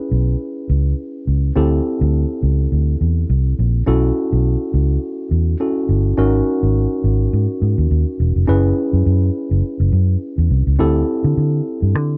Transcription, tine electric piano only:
0.00 1.52 C#4 medium
0.00 1.52 E4 medium
0.00 1.52 G#4 medium
0.00 1.56 B4 medium
1.56 3.83 C4 medium
1.56 3.83 E4 medium
1.56 3.83 G4 medium
1.56 3.83 A4 medium
3.86 5.56 C#4 medium
3.86 5.57 E4 medium
3.86 5.57 F#4 medium
3.86 5.57 A4 medium
5.60 6.16 C#4 medium
5.60 6.18 E4 soft
5.60 6.17 F#4 medium
5.60 6.18 A4 medium
6.17 8.44 C#4 medium
6.17 8.45 D#4 medium
6.17 8.45 F#4 medium
6.17 8.45 A#4 medium
8.47 10.75 C#4 medium
8.47 10.75 E4 medium
8.47 10.75 G#4 medium
8.47 10.76 B4 medium
10.79 12.18 C4 medium
10.79 12.18 E4 medium
10.79 12.18 G4 medium
10.79 12.18 A4 medium

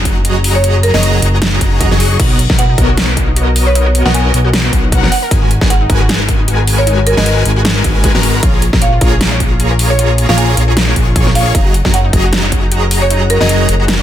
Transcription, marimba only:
0.55 0.66 C#5 medium
0.83 0.92 A#4 medium
0.94 1.33 D#5 medium
2.59 3.14 F#5 medium
3.67 3.77 C#5 medium
4.06 4.13 F#5 medium
4.14 4.45 G#5 medium
5.12 5.51 F#5 medium
5.70 6.25 F#5 medium
6.78 6.89 C#5 medium
7.07 7.15 A#4 medium
7.17 7.56 D#5 medium
8.82 9.37 F5 medium
9.90 10.01 C#5 medium
10.29 10.36 F5 medium
10.38 10.68 G#5 medium
11.35 11.59 F5 medium
11.94 12.49 F#5 medium
13.02 13.13 C#5 medium
13.30 13.39 A#4 medium
13.41 13.80 D#5 loud

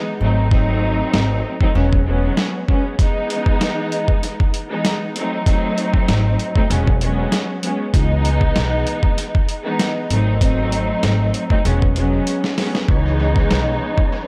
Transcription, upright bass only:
0.21 1.00 G#1 loud
1.13 1.40 G#1 loud
1.75 2.28 E1 loud
6.08 6.35 G#1 loud
6.70 7.23 E1 loud
7.94 8.47 C#2 loud
8.56 8.82 B1 loud
10.10 10.90 G#1 loud
11.03 11.30 G#1 loud
11.65 12.18 E1 loud
12.89 13.42 C#2 loud
13.50 13.77 B1 loud

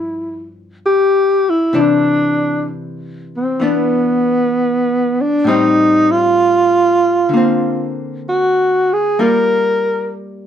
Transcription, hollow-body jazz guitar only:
0.00 1.74 G2 soft
0.00 1.74 F3 soft
0.00 1.76 B3 medium
0.00 1.74 E4 medium
1.73 5.46 C3 soft
1.73 3.58 E3 soft
1.73 3.61 D4 medium
3.60 5.46 E3 soft
3.60 5.47 B3 soft
3.60 5.47 D4 soft
5.44 7.32 A2 soft
5.44 7.33 G3 medium
5.48 7.34 C4 medium
5.48 7.34 D#4 soft
7.29 9.17 D3 soft
7.33 9.18 A#3 soft
7.33 9.19 C4 soft
9.19 10.47 G3 soft
9.19 10.47 A#3 soft
9.19 10.47 F4 soft

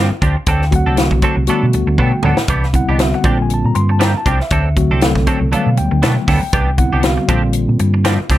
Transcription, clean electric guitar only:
0.00 0.11 F3 medium
0.10 muted clean electric guitar stroke soft
0.22 0.36 F3 medium
0.22 0.36 C4 medium
0.22 0.36 D4 medium
0.22 0.36 G4 medium
0.37 muted clean electric guitar stroke soft
0.48 0.64 F#3 medium
0.48 0.64 C4 medium
0.48 0.64 D4 medium
0.48 0.64 A4 medium
0.73 muted clean electric guitar stroke soft
0.86 0.97 C4 soft
0.86 0.97 D4 soft
0.86 0.98 A4 medium
0.98 muted clean electric guitar stroke soft
1.12 muted clean electric guitar stroke soft
1.23 1.37 F#3 medium
1.23 1.36 C4 medium
1.23 1.36 D4 medium
1.23 1.36 A4 loud
1.37 muted clean electric guitar stroke soft
1.49 1.65 F#3 medium
1.49 1.65 B3 medium
1.49 1.65 D4 medium
1.49 1.65 A4 medium
1.74 muted clean electric guitar stroke soft
1.87 muted clean electric guitar stroke soft
1.99 2.13 F#3 medium
1.99 2.12 B3 medium
1.99 2.12 D4 medium
1.99 2.12 A4 medium
2.13 muted clean electric guitar stroke soft
2.24 2.38 F#3 medium
2.24 2.37 B3 medium
2.24 2.37 D4 medium
2.24 2.37 A4 medium
2.38 muted clean electric guitar stroke soft
2.49 2.66 E3 medium
2.49 2.66 B3 medium
2.49 2.66 D4 medium
2.49 2.66 G4 medium
2.74 muted clean electric guitar stroke soft
2.89 2.99 B3 soft
2.89 2.99 D4 soft
2.89 2.99 G4 medium
3.14 muted clean electric guitar stroke soft
3.25 3.39 F3 medium
3.25 3.38 C4 medium
3.25 3.38 D4 medium
3.25 3.38 G4 medium
3.39 muted clean electric guitar stroke soft
3.75 muted clean electric guitar stroke soft
3.89 muted clean electric guitar stroke soft
4.00 4.14 F3 medium
4.00 4.14 C4 medium
4.00 4.14 D4 medium
4.00 4.14 G4 medium
4.15 muted clean electric guitar stroke soft
4.26 4.40 F3 medium
4.26 4.40 C4 medium
4.26 4.40 D4 medium
4.26 4.39 G4 medium
4.40 muted clean electric guitar stroke soft
4.52 4.68 F#3 medium
4.52 4.68 C4 medium
4.52 4.68 D4 medium
4.52 4.68 A4 medium
4.77 muted clean electric guitar stroke soft
4.91 5.01 C4 soft
4.91 5.02 D4 soft
4.91 5.01 A4 medium
5.02 muted clean electric guitar stroke soft
5.16 muted clean electric guitar stroke soft
5.27 5.41 F#3 medium
5.27 5.40 C4 medium
5.27 5.40 D4 medium
5.27 5.39 A4 loud
5.40 muted clean electric guitar stroke soft
5.52 5.68 F#3 medium
5.52 5.68 B3 medium
5.52 5.69 D4 medium
5.52 5.69 A4 medium
5.77 muted clean electric guitar stroke soft
5.91 muted clean electric guitar stroke soft
6.02 6.17 F#3 medium
6.02 6.16 B3 medium
6.02 6.16 D4 medium
6.02 6.15 A4 medium
6.16 muted clean electric guitar stroke soft
6.28 6.42 F#3 medium
6.28 6.41 B3 medium
6.28 6.41 D4 medium
6.28 6.40 A4 medium
6.42 muted clean electric guitar stroke soft
6.53 6.69 E3 medium
6.53 6.70 B3 medium
6.53 6.70 D4 medium
6.53 6.70 G4 medium
6.78 muted clean electric guitar stroke soft
6.93 7.03 B3 soft
6.93 7.03 D4 soft
6.93 7.03 G4 medium
7.17 muted clean electric guitar stroke soft
7.29 7.43 F3 medium
7.29 7.42 C4 medium
7.29 7.42 D4 loud
7.29 7.42 G4 medium
7.80 muted clean electric guitar stroke soft
7.94 muted clean electric guitar stroke soft
8.05 8.19 F3 loud
8.05 8.19 C4 loud
8.05 8.19 D4 loud
8.05 8.18 G4 loud
8.20 muted clean electric guitar stroke soft
8.30 8.38 F3 medium
8.30 8.38 C4 medium
8.30 8.38 D4 medium
8.30 8.38 G4 medium

